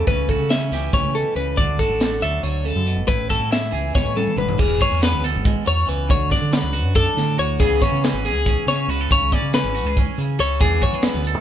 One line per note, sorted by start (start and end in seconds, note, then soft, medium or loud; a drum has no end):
0.00 0.71 E3 medium
0.00 2.89 A3 medium
0.07 0.37 C#2 medium
0.07 0.73 C#3 medium
0.07 0.52 C#4 medium
0.07 0.29 B4 medium
0.07 kick medium
0.07 closed hi-hat medium
0.28 0.73 F#4 medium
0.28 0.50 A4 medium
0.28 kick medium
0.28 closed hi-hat medium
0.39 0.69 C#3 medium
0.50 1.60 C#4 medium
0.50 0.93 E5 medium
0.50 snare loud
0.50 closed hi-hat medium
0.71 0.91 C#2 medium
0.71 1.58 E3 medium
0.71 1.56 G4 medium
0.71 snare soft
0.71 closed hi-hat medium
0.93 1.03 C#2 medium
0.93 1.15 A2 medium
0.93 1.15 C#5 medium
0.93 kick loud
0.93 snare soft
0.93 closed hi-hat medium
1.03 1.23 C#3 medium
1.14 1.36 B2 medium
1.14 1.36 A4 medium
1.14 closed hi-hat medium
1.35 1.55 C#2 medium
1.35 1.58 C#3 medium
1.35 1.58 B4 medium
1.35 closed hi-hat medium
1.57 1.78 D2 medium
1.57 2.42 D3 medium
1.57 2.01 D4 medium
1.57 1.79 D5 medium
1.57 kick medium
1.57 closed hi-hat medium
1.79 2.22 F#4 medium
1.79 2.22 A4 medium
1.79 kick medium
1.79 closed hi-hat medium
1.89 2.19 A1 medium
2.00 3.07 D4 medium
2.00 snare loud
2.00 closed hi-hat medium
2.22 2.42 D2 medium
2.22 3.06 F#3 medium
2.22 3.06 A4 medium
2.22 2.43 E5 medium
2.22 closed hi-hat medium
2.43 2.73 D2 medium
2.43 2.64 D3 medium
2.43 2.66 C#5 medium
2.43 closed hi-hat medium
2.65 2.86 C#3 medium
2.65 3.07 A4 medium
2.65 closed hi-hat medium
2.75 2.98 F#2 medium
2.86 3.08 B2 medium
2.86 closed hi-hat soft
2.96 3.07 A1 medium
3.07 3.38 A1 medium
3.07 4.56 A2 medium
3.07 3.50 E4 medium
3.07 3.30 B4 medium
3.07 kick loud
3.07 closed hi-hat medium
3.29 3.72 F#4 medium
3.29 3.52 A4 medium
3.29 kick medium
3.29 closed hi-hat medium
3.40 3.70 A2 medium
3.51 4.56 E4 medium
3.51 3.95 E5 medium
3.51 snare loud
3.51 closed hi-hat medium
3.71 3.93 C#2 medium
3.71 4.57 E3 medium
3.71 4.56 G#4 medium
3.71 closed hi-hat medium
3.93 4.04 C#2 medium
3.93 4.15 B2 medium
3.93 4.16 C#5 medium
3.93 kick medium
3.93 snare soft
4.05 4.25 A2 medium
4.16 4.36 C#3 medium
4.16 4.38 A4 medium
4.16 high tom medium
4.27 mid tom medium
4.36 4.57 A1 medium
4.36 4.59 D3 medium
4.36 4.59 B4 medium
4.36 mid tom medium
4.49 floor tom medium
4.58 4.79 E1 medium
4.58 5.45 E3 medium
4.58 4.81 G#4 medium
4.58 kick loud
4.58 crash loud
4.81 5.24 G#4 medium
4.81 5.03 C#5 medium
4.81 kick medium
4.81 closed hi-hat medium
4.91 5.11 E2 medium
5.01 6.07 B3 medium
5.01 5.24 B4 medium
5.01 snare loud
5.01 closed hi-hat loud
5.13 5.36 D2 medium
5.24 6.07 A4 medium
5.24 snare soft
5.24 closed hi-hat medium
5.35 5.54 G#1 medium
5.45 5.65 G#3 medium
5.45 kick loud
5.45 closed hi-hat medium
5.66 5.87 E2 medium
5.66 5.86 F#3 medium
5.66 5.89 C#5 medium
5.66 closed hi-hat medium
5.87 6.08 C#2 medium
5.87 6.09 E3 medium
5.87 6.10 B4 medium
5.87 closed hi-hat medium
6.09 6.30 D2 medium
6.09 7.57 D3 medium
6.09 6.32 C#5 medium
6.09 kick loud
6.09 closed hi-hat medium
6.30 6.94 D4 medium
6.30 6.53 D5 medium
6.30 kick medium
6.30 snare soft
6.30 closed hi-hat medium
6.41 6.62 D3 medium
6.51 7.57 F#3 medium
6.51 6.95 B4 medium
6.51 snare loud
6.51 closed hi-hat medium
6.63 6.85 C#2 medium
6.73 7.37 F#4 medium
6.73 closed hi-hat medium
6.85 7.05 F#2 medium
6.95 7.57 D4 medium
6.95 7.39 A4 medium
6.95 kick loud
6.95 closed hi-hat medium
7.17 7.57 A2 medium
7.17 7.37 D3 medium
7.17 snare soft
7.17 closed hi-hat medium
7.38 7.58 D2 medium
7.38 7.60 F#4 medium
7.38 7.60 C#5 medium
7.38 closed hi-hat medium
7.59 7.80 C#2 medium
7.59 8.03 C#3 medium
7.59 8.04 E3 medium
7.59 9.15 B3 medium
7.59 7.83 C#4 medium
7.59 7.81 G#4 medium
7.59 8.25 G#4 medium
7.59 kick loud
7.59 closed hi-hat medium
7.82 8.46 C#4 medium
7.82 8.04 C#5 medium
7.82 kick medium
7.82 snare soft
7.82 closed hi-hat medium
7.92 8.12 C#3 medium
8.04 9.54 E3 medium
8.04 8.25 B4 medium
8.04 snare loud
8.04 closed hi-hat loud
8.13 8.34 G#1 medium
8.25 8.68 G#4 medium
8.25 8.89 G#4 medium
8.25 snare soft
8.25 closed hi-hat medium
8.34 8.55 C#2 medium
8.46 9.32 C#4 medium
8.46 kick loud
8.46 closed hi-hat medium
8.67 8.87 C#3 medium
8.67 9.08 C#3 medium
8.67 8.90 C#5 medium
8.67 snare soft
8.67 closed hi-hat medium
8.88 9.08 C#2 medium
8.88 9.01 F#4 medium
8.88 9.11 B4 medium
8.88 closed hi-hat medium
9.01 9.11 A4 medium
9.11 9.31 C#2 medium
9.11 9.54 C#3 medium
9.11 9.33 C#5 medium
9.11 kick loud
9.11 closed hi-hat medium
9.32 9.97 C#4 medium
9.32 9.54 D5 medium
9.32 kick medium
9.32 snare soft
9.32 closed hi-hat medium
9.42 9.62 C#3 medium
9.53 10.59 E3 medium
9.53 9.97 B4 medium
9.53 snare loud
9.53 closed hi-hat medium
9.64 9.85 G#1 medium
9.75 9.86 F#4 medium
9.75 closed hi-hat medium
9.85 10.05 C#2 medium
9.85 10.39 G#4 medium
9.97 10.62 C#4 medium
9.97 kick loud
9.97 closed hi-hat medium
10.18 10.38 C#3 medium
10.18 10.59 C#3 medium
10.18 closed hi-hat medium
10.39 10.59 C#2 medium
10.39 10.58 A4 medium
10.39 10.61 C#5 medium
10.39 closed hi-hat medium
10.60 10.81 E2 medium
10.60 11.41 E3 medium
10.60 11.03 B3 medium
10.60 11.41 D4 medium
10.60 10.82 G#4 medium
10.60 10.81 G#4 medium
10.60 kick loud
10.60 closed hi-hat medium
10.81 10.94 F#4 medium
10.81 11.04 C#5 medium
10.81 kick medium
10.81 closed hi-hat medium
10.93 11.13 E3 medium
10.93 11.26 G#4 medium
11.02 11.41 B3 medium
11.02 11.26 B4 medium
11.02 snare loud
11.02 closed hi-hat medium
11.14 11.35 D2 medium
11.24 11.41 A4 medium
11.24 closed hi-hat medium
11.35 11.41 G#2 medium